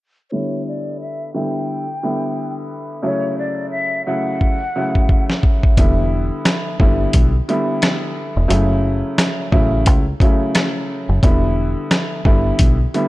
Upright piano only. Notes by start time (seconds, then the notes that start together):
0.32 D3 G3 B3 E4
1.34 D3 G3 B3 E4
2.03 D3 G3 B3 E4
3.02 C#3 F#3 A3 E4
4.07 C#3 F#3 A3 E4
4.76 C#3 F#3 A3 E4
5.77 D3 G3 B3 E4
6.80 D3 G3 B3 E4
7.49 D3 G3 B3 E4
8.48 C#3 F#3 A3 E4
9.52 C#3 F#3 A3 E4
10.21 C#3 F#3 A3 E4
11.23 D3 G3 B3 E4
12.25 D3 G3 B3 E4
12.94 D3 G3 B3 E4